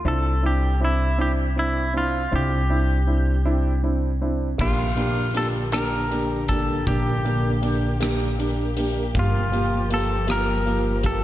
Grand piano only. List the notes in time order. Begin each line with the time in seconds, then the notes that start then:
0.05 C4 D4 E4
0.42 C4 D4 E4
0.80 C4 D4 E4
1.18 C4 D4 E4
1.56 C4 D4 E4
1.94 C4 D4 E4
2.31 C4 D4 E4
2.69 C4 D4 E4
3.07 C4 D4 E4
3.45 C4 D4 E4
3.83 C4 D4 E4
4.21 C4 D4 E4
4.58 A#3 D4 G4
4.96 A#3 D4 G4
5.34 A#3 D4 G4
5.72 A#3 D4 G4
6.11 A#3 D4 G4
6.49 A#3 D4 G4
6.87 A#3 D4 G4
7.25 A#3 D4 G4
7.62 A#3 D4 G4
8.00 A#3 D4 G4
8.39 A#3 D4 G4
8.77 A#3 D4 G4
9.15 A#3 F4 G4
9.52 A#3 F4 G4
9.90 A#3 F4 G4
10.27 A#3 F4 G4
10.66 A#3 F4 G4
11.03 A#3 F4 G4